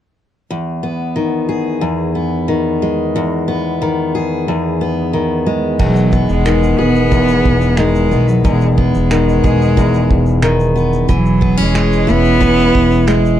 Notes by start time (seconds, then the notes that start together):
0.50 E2
0.83 B3
1.16 D#3
1.49 G#4
1.81 E2
2.15 B3
2.48 D#3
2.82 G#3
3.16 E2
3.48 B3
3.82 D#3
4.15 G#4
4.48 E2
4.81 B3
5.13 D#3
5.46 G#3
5.79 E1 E2 F#3, kick, crash
5.96 shaker
6.12 B3, kick, shaker
6.29 E1 G#3, shaker
6.46 D#3, finger snap, shaker
6.63 shaker
6.79 E1 B3 G#4
6.95 shaker
7.11 E2, kick, shaker
7.28 shaker
7.46 E1, kick
7.61 shaker
7.77 D#3 G#3, finger snap, shaker
7.95 shaker
8.11 B1 B3, shaker
8.28 F#3, shaker
8.43 E1 E2 G#3, kick, shaker
8.61 shaker
8.76 G#3 B3, kick
8.94 E1, shaker
9.11 D#3, finger snap, shaker
9.29 shaker
9.44 E1 G#4, kick, shaker
9.61 shaker
9.77 E2, kick, shaker
9.94 shaker
10.11 E1, kick
10.26 shaker
10.42 D#3, finger snap, shaker
10.60 shaker
10.76 B3, shaker
10.93 shaker
11.09 E1 E3 F#3, kick, shaker
11.25 shaker
11.41 B3, kick
11.57 E1 C#4, shaker
11.62 G#3
11.74 G#3, finger snap, shaker
11.93 shaker
12.07 E1 E4, shaker
12.11 B3
12.25 shaker
12.40 E3, kick, shaker
12.59 shaker
12.75 E1, kick
12.91 shaker
13.07 G#3, finger snap, shaker
13.26 shaker